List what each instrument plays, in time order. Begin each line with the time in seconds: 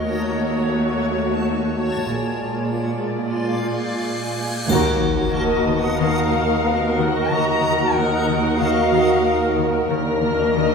Already playing: cello section D#2, viola section A3 F#4, synth texture F#4 C#5 A5, violin section C#5
2.08 double bass section A#1, cello section A#2, viola section G#3 F4, synth texture F4 D5 G#5, vibraphone G#4 G#5, violin section D5, cymbal swell
4.67 double bass section D#2, cello section D#2, timpani D#3, harp D#3, synth texture F#4 A#4 D#5, viola section F#4, violin section F#4 A#4, sub drop, triangle
5.02 harp D#3
5.34 harp D#3, viola section A#4, violin section D#5, vibraphone A5
5.66 harp D#3, viola section B3
5.99 harp D#3, viola section A#4, violin section F5
6.33 harp D#3
6.64 viola section B3, harp D#4
6.97 harp D#3, viola section A#4, violin section F#5
7.29 harp D#3, viola section F#4, violin section A#5
7.62 harp D#3
7.94 harp D#3, viola section D#4, violin section F#5
8.29 harp D#3
8.58 harp D#3, viola section A#4, violin section F5
8.92 harp D#3, viola section F#4, vibraphone A#4 F5
9.25 harp D#4, viola section A#4
9.58 harp D#3, viola section A#4
9.90 double bass section D#2, cello section D#2, harp D#3, violin section D4 A#4 F6 A#6, viola section A#4
10.23 harp D#3, viola section A#4
10.56 harp D#3, viola section A#4, violin section D#5